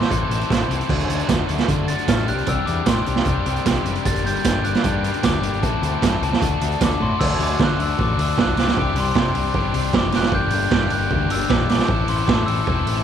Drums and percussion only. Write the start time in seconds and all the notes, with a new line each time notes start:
0.01 snare
0.11 kick, closed hi-hat
0.31 closed hi-hat
0.41 closed hi-hat
0.50 kick, snare, closed hi-hat
0.61 closed hi-hat
0.71 closed hi-hat
0.81 closed hi-hat
0.89 kick, crash
0.99 closed hi-hat
1.10 closed hi-hat
1.19 closed hi-hat
1.29 kick, snare, closed hi-hat, tambourine
1.49 closed hi-hat
1.58 snare, closed hi-hat
1.68 kick, closed hi-hat
1.88 closed hi-hat
1.98 closed hi-hat
2.08 kick, snare, closed hi-hat, tambourine
2.18 closed hi-hat
2.28 closed hi-hat
2.38 closed hi-hat
2.46 kick, closed hi-hat
2.67 closed hi-hat
2.86 kick, snare, closed hi-hat, tambourine
3.06 closed hi-hat
3.16 snare
3.25 kick, closed hi-hat
3.46 closed hi-hat
3.56 closed hi-hat
3.66 kick, snare, closed hi-hat, tambourine
3.76 closed hi-hat
3.86 closed hi-hat
3.95 closed hi-hat
4.05 kick, closed hi-hat
4.16 closed hi-hat
4.26 closed hi-hat
4.36 closed hi-hat
4.44 kick, snare, closed hi-hat, tambourine
4.64 closed hi-hat
4.74 snare, closed hi-hat
4.84 kick, closed hi-hat
5.04 closed hi-hat
5.13 closed hi-hat
5.23 kick, snare, closed hi-hat, tambourine
5.43 closed hi-hat
5.53 closed hi-hat
5.63 kick, closed hi-hat
5.83 closed hi-hat
6.02 kick, snare, closed hi-hat, tambourine
6.23 closed hi-hat
6.33 snare
6.42 kick, closed hi-hat
6.61 closed hi-hat
6.71 closed hi-hat
6.81 kick, snare, closed hi-hat, tambourine
6.91 closed hi-hat
7.01 kick
7.21 kick, crash
7.40 open hi-hat
7.60 kick, snare
7.80 open hi-hat
7.99 kick
8.19 open hi-hat
8.38 kick, snare
8.57 snare, open hi-hat
8.68 snare
8.77 kick
8.96 open hi-hat
9.15 kick, snare
9.35 open hi-hat
9.54 kick
9.74 open hi-hat
9.93 kick, snare
10.12 snare, open hi-hat
10.22 snare
10.32 kick
10.50 open hi-hat
10.71 kick, snare
10.90 open hi-hat
11.11 kick
11.30 open hi-hat
11.50 kick, snare
11.69 snare, open hi-hat
11.79 snare
11.88 kick
12.08 open hi-hat
12.28 kick, snare
12.48 open hi-hat
12.67 kick
12.87 open hi-hat